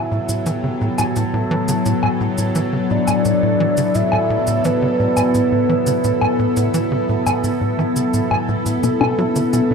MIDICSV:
0, 0, Header, 1, 6, 480
1, 0, Start_track
1, 0, Tempo, 697674
1, 318, Time_signature, 4, 2, 24, 8
1, 6704, End_track
2, 0, Start_track
2, 0, Title_t, "Soft synth lead"
2, 0, Program_c, 0, 80
2, 0, Note_on_c, 0, 76, 95
2, 312, Note_on_c, 0, 79, 104
2, 323, Note_off_c, 0, 76, 0
2, 797, Note_on_c, 0, 81, 108
2, 807, Note_off_c, 0, 79, 0
2, 1757, Note_off_c, 0, 81, 0
2, 1998, Note_on_c, 0, 74, 106
2, 2715, Note_on_c, 0, 76, 107
2, 2725, Note_off_c, 0, 74, 0
2, 3193, Note_on_c, 0, 71, 99
2, 3203, Note_off_c, 0, 76, 0
2, 5596, Note_off_c, 0, 71, 0
2, 6704, End_track
3, 0, Start_track
3, 0, Title_t, "Ambient pad"
3, 0, Program_c, 1, 92
3, 0, Note_on_c, 1, 54, 84
3, 0, Note_on_c, 1, 59, 92
3, 0, Note_on_c, 1, 64, 77
3, 0, Note_on_c, 1, 66, 84
3, 0, Note_on_c, 1, 69, 83
3, 139, Note_off_c, 1, 66, 0
3, 6077, Note_off_c, 1, 54, 0
3, 6704, Note_off_c, 1, 59, 0
3, 6704, Note_off_c, 1, 64, 0
3, 6704, Note_off_c, 1, 69, 0
3, 6704, End_track
4, 0, Start_track
4, 0, Title_t, "Synth arpeggio sound"
4, 0, Program_c, 2, 84
4, 6080, Note_on_c, 2, 59, 99
4, 6175, Note_off_c, 2, 59, 0
4, 6198, Note_on_c, 2, 62, 102
4, 6294, Note_off_c, 2, 62, 0
4, 6319, Note_on_c, 2, 66, 74
4, 6376, Note_off_c, 2, 66, 0
4, 6439, Note_on_c, 2, 71, 73
4, 6497, Note_off_c, 2, 71, 0
4, 6558, Note_on_c, 2, 59, 80
4, 6616, Note_off_c, 2, 59, 0
4, 6680, Note_on_c, 2, 62, 74
4, 6704, Note_off_c, 2, 62, 0
4, 6704, End_track
5, 0, Start_track
5, 0, Title_t, "Analog synth bass"
5, 0, Program_c, 3, 38
5, 80, Note_on_c, 3, 45, 69
5, 137, Note_off_c, 3, 45, 0
5, 199, Note_on_c, 3, 45, 69
5, 286, Note_off_c, 3, 45, 0
5, 319, Note_on_c, 3, 52, 98
5, 353, Note_off_c, 3, 52, 0
5, 438, Note_on_c, 3, 49, 72
5, 473, Note_off_c, 3, 49, 0
5, 559, Note_on_c, 3, 45, 77
5, 617, Note_off_c, 3, 45, 0
5, 681, Note_on_c, 3, 45, 77
5, 714, Note_off_c, 3, 45, 0
5, 801, Note_on_c, 3, 45, 80
5, 858, Note_off_c, 3, 45, 0
5, 920, Note_on_c, 3, 45, 73
5, 1006, Note_off_c, 3, 45, 0
5, 1039, Note_on_c, 3, 52, 102
5, 1073, Note_off_c, 3, 52, 0
5, 1159, Note_on_c, 3, 49, 73
5, 1194, Note_off_c, 3, 49, 0
5, 1279, Note_on_c, 3, 45, 80
5, 1337, Note_off_c, 3, 45, 0
5, 1399, Note_on_c, 3, 45, 76
5, 1434, Note_off_c, 3, 45, 0
5, 1519, Note_on_c, 3, 45, 74
5, 1577, Note_off_c, 3, 45, 0
5, 1638, Note_on_c, 3, 45, 73
5, 1726, Note_off_c, 3, 45, 0
5, 1758, Note_on_c, 3, 52, 97
5, 1793, Note_off_c, 3, 52, 0
5, 1880, Note_on_c, 3, 49, 73
5, 1914, Note_off_c, 3, 49, 0
5, 2000, Note_on_c, 3, 45, 75
5, 2058, Note_off_c, 3, 45, 0
5, 2119, Note_on_c, 3, 45, 71
5, 2154, Note_off_c, 3, 45, 0
5, 2238, Note_on_c, 3, 45, 80
5, 2296, Note_off_c, 3, 45, 0
5, 2359, Note_on_c, 3, 45, 74
5, 2446, Note_off_c, 3, 45, 0
5, 2478, Note_on_c, 3, 52, 95
5, 2513, Note_off_c, 3, 52, 0
5, 2598, Note_on_c, 3, 49, 74
5, 2633, Note_off_c, 3, 49, 0
5, 2719, Note_on_c, 3, 45, 77
5, 2777, Note_off_c, 3, 45, 0
5, 2840, Note_on_c, 3, 45, 76
5, 2874, Note_off_c, 3, 45, 0
5, 2959, Note_on_c, 3, 45, 74
5, 3017, Note_off_c, 3, 45, 0
5, 3079, Note_on_c, 3, 45, 77
5, 3166, Note_off_c, 3, 45, 0
5, 3199, Note_on_c, 3, 52, 98
5, 3233, Note_off_c, 3, 52, 0
5, 3318, Note_on_c, 3, 49, 74
5, 3353, Note_off_c, 3, 49, 0
5, 3438, Note_on_c, 3, 45, 75
5, 3496, Note_off_c, 3, 45, 0
5, 3558, Note_on_c, 3, 45, 75
5, 3593, Note_off_c, 3, 45, 0
5, 3679, Note_on_c, 3, 45, 83
5, 3737, Note_off_c, 3, 45, 0
5, 3798, Note_on_c, 3, 45, 77
5, 3886, Note_off_c, 3, 45, 0
5, 3917, Note_on_c, 3, 52, 97
5, 3953, Note_off_c, 3, 52, 0
5, 4037, Note_on_c, 3, 49, 72
5, 4072, Note_off_c, 3, 49, 0
5, 4158, Note_on_c, 3, 45, 80
5, 4216, Note_off_c, 3, 45, 0
5, 4278, Note_on_c, 3, 45, 73
5, 4313, Note_off_c, 3, 45, 0
5, 4399, Note_on_c, 3, 45, 76
5, 4457, Note_off_c, 3, 45, 0
5, 4519, Note_on_c, 3, 45, 75
5, 4606, Note_off_c, 3, 45, 0
5, 4638, Note_on_c, 3, 52, 99
5, 4673, Note_off_c, 3, 52, 0
5, 4758, Note_on_c, 3, 49, 75
5, 4793, Note_off_c, 3, 49, 0
5, 4879, Note_on_c, 3, 45, 77
5, 4937, Note_off_c, 3, 45, 0
5, 4999, Note_on_c, 3, 45, 75
5, 5033, Note_off_c, 3, 45, 0
5, 5117, Note_on_c, 3, 45, 79
5, 5176, Note_off_c, 3, 45, 0
5, 5237, Note_on_c, 3, 45, 77
5, 5325, Note_off_c, 3, 45, 0
5, 5358, Note_on_c, 3, 52, 101
5, 5393, Note_off_c, 3, 52, 0
5, 5478, Note_on_c, 3, 49, 72
5, 5513, Note_off_c, 3, 49, 0
5, 5598, Note_on_c, 3, 45, 82
5, 5656, Note_off_c, 3, 45, 0
5, 5718, Note_on_c, 3, 45, 75
5, 5753, Note_off_c, 3, 45, 0
5, 5839, Note_on_c, 3, 45, 72
5, 5897, Note_off_c, 3, 45, 0
5, 5958, Note_on_c, 3, 45, 70
5, 6045, Note_off_c, 3, 45, 0
5, 6078, Note_on_c, 3, 47, 80
5, 6136, Note_off_c, 3, 47, 0
5, 6199, Note_on_c, 3, 47, 72
5, 6286, Note_off_c, 3, 47, 0
5, 6319, Note_on_c, 3, 54, 95
5, 6354, Note_off_c, 3, 54, 0
5, 6439, Note_on_c, 3, 50, 74
5, 6474, Note_off_c, 3, 50, 0
5, 6558, Note_on_c, 3, 47, 84
5, 6616, Note_off_c, 3, 47, 0
5, 6678, Note_on_c, 3, 47, 75
5, 6704, Note_off_c, 3, 47, 0
5, 6704, End_track
6, 0, Start_track
6, 0, Title_t, "Drums"
6, 198, Note_on_c, 9, 69, 59
6, 267, Note_off_c, 9, 69, 0
6, 317, Note_on_c, 9, 69, 47
6, 386, Note_off_c, 9, 69, 0
6, 677, Note_on_c, 9, 69, 60
6, 677, Note_on_c, 9, 77, 69
6, 746, Note_off_c, 9, 69, 0
6, 746, Note_off_c, 9, 77, 0
6, 797, Note_on_c, 9, 69, 47
6, 866, Note_off_c, 9, 69, 0
6, 1158, Note_on_c, 9, 69, 64
6, 1227, Note_off_c, 9, 69, 0
6, 1277, Note_on_c, 9, 69, 46
6, 1346, Note_off_c, 9, 69, 0
6, 1396, Note_on_c, 9, 77, 67
6, 1464, Note_off_c, 9, 77, 0
6, 1636, Note_on_c, 9, 69, 56
6, 1705, Note_off_c, 9, 69, 0
6, 1756, Note_on_c, 9, 69, 48
6, 1824, Note_off_c, 9, 69, 0
6, 2116, Note_on_c, 9, 69, 59
6, 2116, Note_on_c, 9, 77, 69
6, 2185, Note_off_c, 9, 69, 0
6, 2185, Note_off_c, 9, 77, 0
6, 2236, Note_on_c, 9, 69, 47
6, 2304, Note_off_c, 9, 69, 0
6, 2594, Note_on_c, 9, 69, 61
6, 2663, Note_off_c, 9, 69, 0
6, 2715, Note_on_c, 9, 69, 46
6, 2784, Note_off_c, 9, 69, 0
6, 2834, Note_on_c, 9, 77, 67
6, 2902, Note_off_c, 9, 77, 0
6, 3075, Note_on_c, 9, 69, 60
6, 3144, Note_off_c, 9, 69, 0
6, 3195, Note_on_c, 9, 69, 46
6, 3264, Note_off_c, 9, 69, 0
6, 3555, Note_on_c, 9, 69, 54
6, 3555, Note_on_c, 9, 77, 72
6, 3624, Note_off_c, 9, 69, 0
6, 3624, Note_off_c, 9, 77, 0
6, 3677, Note_on_c, 9, 69, 47
6, 3746, Note_off_c, 9, 69, 0
6, 4036, Note_on_c, 9, 69, 58
6, 4105, Note_off_c, 9, 69, 0
6, 4156, Note_on_c, 9, 69, 46
6, 4225, Note_off_c, 9, 69, 0
6, 4276, Note_on_c, 9, 77, 76
6, 4345, Note_off_c, 9, 77, 0
6, 4517, Note_on_c, 9, 69, 60
6, 4586, Note_off_c, 9, 69, 0
6, 4638, Note_on_c, 9, 69, 49
6, 4707, Note_off_c, 9, 69, 0
6, 4999, Note_on_c, 9, 69, 61
6, 4999, Note_on_c, 9, 77, 77
6, 5067, Note_off_c, 9, 69, 0
6, 5067, Note_off_c, 9, 77, 0
6, 5118, Note_on_c, 9, 69, 47
6, 5187, Note_off_c, 9, 69, 0
6, 5478, Note_on_c, 9, 69, 59
6, 5546, Note_off_c, 9, 69, 0
6, 5597, Note_on_c, 9, 69, 50
6, 5666, Note_off_c, 9, 69, 0
6, 5718, Note_on_c, 9, 77, 76
6, 5787, Note_off_c, 9, 77, 0
6, 5958, Note_on_c, 9, 69, 62
6, 6026, Note_off_c, 9, 69, 0
6, 6078, Note_on_c, 9, 69, 48
6, 6146, Note_off_c, 9, 69, 0
6, 6198, Note_on_c, 9, 77, 75
6, 6267, Note_off_c, 9, 77, 0
6, 6438, Note_on_c, 9, 69, 61
6, 6507, Note_off_c, 9, 69, 0
6, 6559, Note_on_c, 9, 69, 50
6, 6627, Note_off_c, 9, 69, 0
6, 6704, End_track
0, 0, End_of_file